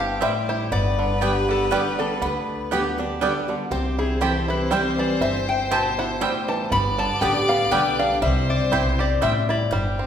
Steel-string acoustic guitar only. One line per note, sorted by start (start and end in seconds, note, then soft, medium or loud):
0.00 0.17 G2 medium
0.00 0.20 B3 medium
0.22 0.69 A2 medium
0.72 1.67 G2 medium
1.22 1.69 D3 medium
1.22 1.70 G3 medium
1.22 1.70 B3 medium
1.22 1.70 G4 medium
1.71 1.97 D3 medium
1.71 1.98 G3 medium
1.71 1.98 B3 loud
1.71 1.97 G4 loud
1.99 2.21 B3 soft
1.99 2.21 G4 medium
2.22 2.71 D3 medium
2.72 2.98 D3 medium
2.72 2.98 G3 medium
2.72 2.99 B3 medium
2.72 2.97 G4 medium
2.98 3.21 B3 medium
2.98 3.20 G4 medium
3.21 3.48 D3 medium
3.21 3.48 G3 medium
3.21 3.48 B3 medium
3.21 3.47 G4 medium
3.48 3.71 B3 soft
3.48 3.70 G4 medium
3.72 4.67 C3 medium
4.21 4.69 E3 medium
4.21 4.69 G3 medium
4.21 4.69 C4 medium
4.21 4.70 E4 medium
4.71 5.19 E3 medium
4.71 5.20 G3 medium
4.71 5.20 C4 medium
4.71 5.20 E4 loud
5.22 6.17 G2 medium
5.71 6.19 B2 medium
6.21 6.69 A2 loud
6.72 7.67 G2 loud
7.22 7.48 D3 medium
7.22 7.48 G3 loud
7.22 7.48 B3 medium
7.22 7.48 G4 medium
7.49 7.71 B3 medium
7.49 7.71 G4 medium
7.71 8.19 D3 medium
7.71 8.20 G3 loud
7.71 8.20 B3 loud
7.71 8.20 G4 loud
8.22 9.17 C3 loud
8.73 9.20 B2 medium
9.22 9.70 A2 loud
9.71 10.07 G2 medium